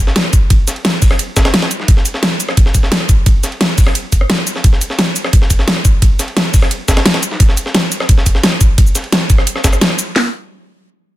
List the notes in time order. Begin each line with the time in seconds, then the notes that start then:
0.07 snare
0.16 snare, closed hi-hat, ride
0.24 cross-stick, ride
0.33 kick, closed hi-hat, ride, shaker
0.50 kick, closed hi-hat, ride
0.68 snare, closed hi-hat, ride, shaker
0.76 ride
0.85 snare, closed hi-hat, ride
0.93 ride
1.02 kick, closed hi-hat, open hi-hat, shaker
1.11 cross-stick, snare
1.19 closed hi-hat, ride
1.36 kick, snare, closed hi-hat, ride, shaker
1.45 cross-stick, snare, ride
1.54 snare, closed hi-hat, ride
1.62 cross-stick, snare, ride
1.71 closed hi-hat, ride, shaker
1.80 snare
1.88 kick, closed hi-hat, ride
1.97 snare
2.05 closed hi-hat, ride, shaker
2.14 snare
2.23 snare, closed hi-hat, ride
2.40 closed hi-hat, ride, shaker
2.49 cross-stick, snare
2.57 kick, closed hi-hat, ride
2.66 snare
2.74 kick, closed hi-hat, ride, shaker
2.83 snare
2.92 snare, closed hi-hat, ride
3.00 cross-stick, ride
3.09 kick, closed hi-hat, ride, shaker
3.26 kick, closed hi-hat, ride
3.43 snare, closed hi-hat, ride, shaker
3.52 ride
3.61 snare, closed hi-hat, ride
3.69 ride
3.78 kick, closed hi-hat, open hi-hat, shaker
3.87 cross-stick, snare
3.95 closed hi-hat, ride
4.12 kick, closed hi-hat, ride, shaker
4.21 cross-stick
4.30 snare, closed hi-hat, ride
4.38 cross-stick
4.47 closed hi-hat, ride, shaker
4.56 snare
4.64 kick, closed hi-hat, ride
4.73 snare
4.81 closed hi-hat, ride, shaker
4.90 snare
4.99 snare, closed hi-hat, ride
5.16 closed hi-hat, ride, shaker
5.24 cross-stick, snare
5.33 kick, closed hi-hat, ride
5.42 snare
5.50 kick, closed hi-hat, ride, shaker
5.59 snare
5.68 snare, closed hi-hat, ride
5.76 cross-stick, ride
5.85 kick, closed hi-hat, ride, shaker
6.02 kick, closed hi-hat, ride
6.19 snare, closed hi-hat, ride, shaker
6.28 ride
6.37 snare, closed hi-hat, ride
6.45 ride
6.54 kick, closed hi-hat, open hi-hat, shaker
6.62 cross-stick, snare
6.71 closed hi-hat, ride
6.88 kick, snare, closed hi-hat, ride, shaker
6.97 cross-stick, snare, ride
7.06 snare, closed hi-hat, ride
7.14 cross-stick, snare, ride
7.23 closed hi-hat, ride, shaker
7.31 snare
7.40 kick, closed hi-hat, ride
7.49 snare
7.57 closed hi-hat, ride, shaker
7.66 snare
7.74 snare, closed hi-hat, ride
7.92 closed hi-hat, ride, shaker
8.00 cross-stick, snare
8.09 kick, closed hi-hat, ride
8.18 snare
8.26 kick, closed hi-hat, ride, shaker
8.35 snare
8.43 snare, closed hi-hat, ride
8.52 cross-stick, ride
8.61 kick, closed hi-hat, ride, shaker
8.78 kick, closed hi-hat, ride
8.87 shaker
8.95 snare, closed hi-hat, ride, shaker
9.04 ride
9.12 snare, closed hi-hat, ride
9.21 ride
9.30 kick, closed hi-hat, ride, shaker
9.38 cross-stick, snare
9.47 closed hi-hat, ride
9.56 cross-stick, snare
9.64 kick, snare, closed hi-hat, ride, shaker
9.73 cross-stick, shaker
9.81 snare, closed hi-hat, ride
9.90 cross-stick
9.99 closed hi-hat, ride, shaker
10.16 snare, open hi-hat